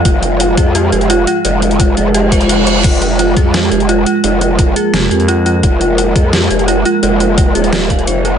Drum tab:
CC |----------------|----------------|x---------------|----------------|
HH |x-x-x-x-x-xxx-x-|x-xxx-x-x-xxx-x-|x-x-x-x-x-xxx-x-|x-x-x-x-x-xxx-x-|
SD |----------------|----------------|--------o-------|--------o-------|
BD |o-----o---------|----o-----o-----|o-----o---------|----o-----------|

CC |----------------|----------------|
HH |x-x-x-x-x-xxx-x-|x-x-x-xxx-xxx-x-|
SD |--------o-------|--------o-------|
BD |o-----o---------|----o-----o-----|